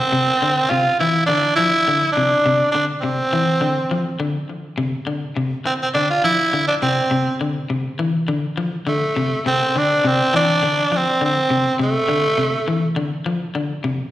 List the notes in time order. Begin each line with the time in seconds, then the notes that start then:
Already playing: C4
0.12 C3
0.42 D3
0.70 C3 F4
0.99 E3 E4
1.26 D3 D4
1.55 F3 E4
1.88 D3
2.12 D4
2.17 C3
2.46 C3
2.72 D3 D4
3.00 C3 C4
3.33 E3
3.61 D3
3.91 F3
4.20 D3
4.78 C3
5.07 D3
5.37 C3
5.66 C4, muted clean electric guitar stroke
5.82 C4
5.94 D3 D4
6.10 F4
6.24 F3 E4
6.53 D3
6.68 D4
6.82 C3 C4
7.11 C3
7.41 D3
7.70 C3
7.99 E3
8.28 D3
8.57 F3
8.87 D3 A3
9.16 C3
9.46 C3 C4
9.76 D3 D4
10.04 C3 C4
10.34 E3 D4
10.63 D3
10.92 F3
10.96 C4
11.21 D3 C4
11.50 C3
11.79 C3 A3
12.08 D3
12.38 C3
12.68 E3
12.96 D3
13.26 F3
13.55 D3
13.84 C3